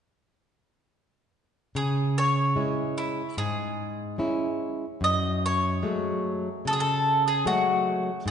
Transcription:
1.75 C#3 G#4
2.18 C#5
2.56 G#3 C#4 E4
2.98 E4
3.37 G#2 G#4
4.18 G#3 C#4 E4
5.01 F#2 D#5
5.46 C#5
5.82 F#3 G#3 A3
6.65 C#3 A4
6.73 G#4
6.80 A4
7.28 G#4
7.45 F#3 G#3 A3 F#4
8.26 G#2 G#4

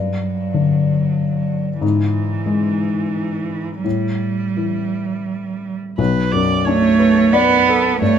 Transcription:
Already playing: G2 F#3
0.54 D3
1.81 G#2 E3
2.46 G#3
3.84 A2 G3
4.57 E3
5.98 B1 B4
6.32 F#2 D5
6.64 A3 D4 C#5
6.99 B4
7.32 B3 B4 D5
7.68 A4 B4
8.01 G2 A3 C#5

